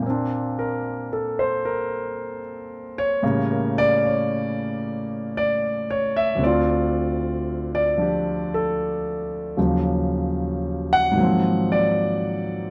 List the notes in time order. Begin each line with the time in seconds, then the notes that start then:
0.00 A#2 A#3
0.06 C4 D4
0.59 A#4
1.13 A4
1.39 C5
1.65 A#4
2.98 C#5
3.22 A2 C#3 G3 A#3
3.52 A#4
3.78 D5
4.05 C#5
5.37 D5
5.90 C#5
6.17 E5
6.35 D2 D3
6.42 C4 F4 D5
7.75 D5
7.98 F3 D4 G4
8.54 A4
9.57 D#2 C#3 F3 F#3
10.93 F#5
11.11 G#2 D#3
11.16 F#3 A#3
11.20 F3 C4
11.72 D5